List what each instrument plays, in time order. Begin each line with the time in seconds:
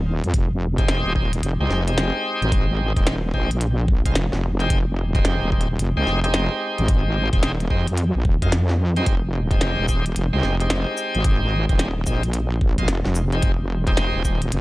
Already playing: wobble bass D#1
0.24 wobble bass F2, closed hi-hat
0.34 wobble bass F1, kick, closed hi-hat
0.78 tonewheel organ G#3 C4 D#4 G4, kick, closed hi-hat
0.88 wobble bass F1, snare, closed hi-hat
1.05 wobble bass D#1
1.16 tonewheel organ G#3 C4 D#4 G4, kick
1.33 closed hi-hat
1.43 wobble bass F1, closed hi-hat
1.60 wobble bass C2, tonewheel organ G#3 C4 D#4 G4
1.70 wobble bass F1, snare
1.88 tonewheel organ G#3 C4 D#4 G4, closed hi-hat
1.98 snare, closed hi-hat
2.42 wobble bass G#1, closed hi-hat
2.52 kick, closed hi-hat
2.96 wobble bass D#1, tonewheel organ G#3 C4 D#4 G4, kick, closed hi-hat
3.07 snare, closed hi-hat
3.34 wobble bass A#1, tonewheel organ G#3 C4 D#4 G4, kick
3.51 closed hi-hat
3.61 closed hi-hat
3.88 kick
4.06 tonewheel organ G#3 C4 D#4 F4, kick, closed hi-hat
4.15 wobble bass F1, snare, closed hi-hat
4.33 wobble bass F1, snare
4.60 tonewheel organ G#3 C4 D#4 G4, closed hi-hat
4.70 wobble bass F1, kick, closed hi-hat
5.15 tonewheel organ G#3 C4 D#4 G4, kick, closed hi-hat
5.25 wobble bass F1, snare, closed hi-hat
5.42 wobble bass D#1
5.52 tonewheel organ G#3 C4 D#4 G4, kick
5.61 closed hi-hat
5.79 wobble bass F1, closed hi-hat
5.97 wobble bass C2, tonewheel organ G#3 C4 D#4 G4
6.07 wobble bass F1, snare
6.24 tonewheel organ G#3 C4 D#4 G4, closed hi-hat
6.34 snare, closed hi-hat
6.78 wobble bass G#1, closed hi-hat
6.88 kick, closed hi-hat
7.33 wobble bass D#1, tonewheel organ G#3 C4 D#4 G4, kick, closed hi-hat
7.43 snare, closed hi-hat
7.60 closed hi-hat
7.70 wobble bass F2, tonewheel organ G#3 C4 D#4 G4, kick
7.88 closed hi-hat
7.97 closed hi-hat
8.15 wobble bass A#1
8.25 wobble bass D#1, kick
8.42 wobble bass F2, tonewheel organ G#3 C4 D#4 F4, kick, closed hi-hat
8.52 snare, closed hi-hat
8.69 snare
8.96 tonewheel organ G#3 C4 D#4 G4, closed hi-hat
9.06 wobble bass F1, kick, closed hi-hat
9.51 tonewheel organ G#3 C4 D#4 G4, kick, closed hi-hat
9.61 wobble bass F1, snare, closed hi-hat
9.79 wobble bass D#1
9.88 tonewheel organ G#3 C4 D#4 G4, kick, shaker
10.06 closed hi-hat
10.16 wobble bass F1, closed hi-hat
10.33 wobble bass C2, tonewheel organ G#3 C4 D#4 G4
10.43 wobble bass F1, snare
10.60 tonewheel organ G#3 C4 D#4 G4, closed hi-hat
10.70 snare, closed hi-hat
10.97 shaker
11.15 wobble bass G#1, closed hi-hat
11.24 kick, closed hi-hat
11.69 wobble bass D#1, tonewheel organ G#3 C4 D#4 G4, kick, closed hi-hat
11.79 snare, closed hi-hat
12.06 wobble bass A#1, tonewheel organ G#3 C4 D#4 G4, kick, shaker
12.23 closed hi-hat
12.33 closed hi-hat
12.61 kick
12.78 tonewheel organ G#3 C4 D#4 F4, kick, closed hi-hat
12.88 wobble bass F1, snare, closed hi-hat
13.05 wobble bass F1, snare
13.15 shaker
13.32 tonewheel organ G#3 C4 D#4 G4, closed hi-hat
13.42 wobble bass F1, kick, closed hi-hat
13.87 tonewheel organ G#3 C4 D#4 G4, kick, closed hi-hat
13.97 wobble bass F1, snare, closed hi-hat
14.15 wobble bass D#1
14.25 tonewheel organ G#3 C4 D#4 G4, kick, shaker
14.42 closed hi-hat
14.52 wobble bass F1, closed hi-hat